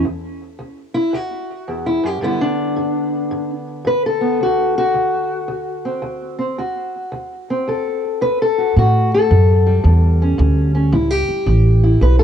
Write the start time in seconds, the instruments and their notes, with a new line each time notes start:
0.05 steel-string acoustic guitar D2
0.59 steel-string acoustic guitar D2
0.94 steel-string acoustic guitar E4
1.13 steel-string acoustic guitar D2 F#4
1.68 steel-string acoustic guitar E2
1.86 steel-string acoustic guitar E4
2.04 steel-string acoustic guitar F#2 G4
2.21 steel-string acoustic guitar G2 D3 G3 B3 E4
2.41 steel-string acoustic guitar D4
2.76 steel-string acoustic guitar G2
3.31 steel-string acoustic guitar G2
3.85 steel-string acoustic guitar G2 B4
4.06 steel-string acoustic guitar A4
4.21 steel-string acoustic guitar B3
4.40 steel-string acoustic guitar D2 F#4
4.78 steel-string acoustic guitar F#4
4.94 steel-string acoustic guitar D2
5.48 steel-string acoustic guitar D2
5.85 steel-string acoustic guitar C4
6.02 steel-string acoustic guitar D2
6.39 steel-string acoustic guitar C4
6.58 steel-string acoustic guitar D2 F#4
7.12 steel-string acoustic guitar D2
7.50 steel-string acoustic guitar C4
7.67 steel-string acoustic guitar D2 A4
8.21 steel-string acoustic guitar D2 B4
8.42 steel-string acoustic guitar A4
8.58 steel-string acoustic guitar F#4
8.76 upright bass A2, steel-string acoustic guitar A2 F#4
9.14 steel-string acoustic guitar A4
9.30 upright bass F#2, steel-string acoustic guitar A2
9.66 steel-string acoustic guitar G3
9.83 upright bass E2, steel-string acoustic guitar A2
10.22 steel-string acoustic guitar C#4
10.38 upright bass D2, steel-string acoustic guitar A2
10.75 steel-string acoustic guitar C#4
10.93 upright bass C#2, steel-string acoustic guitar A2 E4
11.11 steel-string acoustic guitar G4
11.29 muted upright bass stroke
11.46 upright bass A1, steel-string acoustic guitar A2
11.84 steel-string acoustic guitar E4
12.01 upright bass B1, steel-string acoustic guitar A2 B4
12.19 steel-string acoustic guitar A4